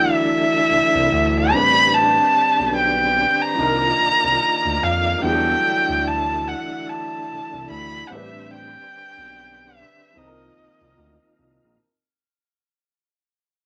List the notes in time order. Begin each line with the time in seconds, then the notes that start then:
Already playing: D3 E3 F#3 G3 A3 D4 E4 A4 G5
0.13 E5
0.70 C2
0.95 C2
1.12 D2
1.49 A1 G3 C4 G4 B4 B5
1.55 D4 B4
1.94 A5
2.60 B1
2.76 G5
3.42 A#5
3.55 C2 D#3 F3 A#3 D4 F4 D5
3.60 D#4 A#4
4.00 C2
4.24 C2
4.65 D2
4.82 F2 F5
5.19 E2 D3 E3 G3 A3 D4 E4
5.24 F#3 G#4 G5
5.33 A4
5.88 D2
6.07 A5
6.48 F#5
6.89 A5
7.29 C2
7.53 C2
7.70 D2 B5
8.08 A1 G3 C4 G4 B4 F#5
8.12 D4 B4 E5
8.54 G5
9.18 B1
9.76 E5
10.14 C2 D#3 F3 A#3 C4 D#4 F4 D#5
10.19 D#4 A4
10.27 A#4
10.58 C2
10.81 C2
10.97 D2
11.38 C2
11.64 A#1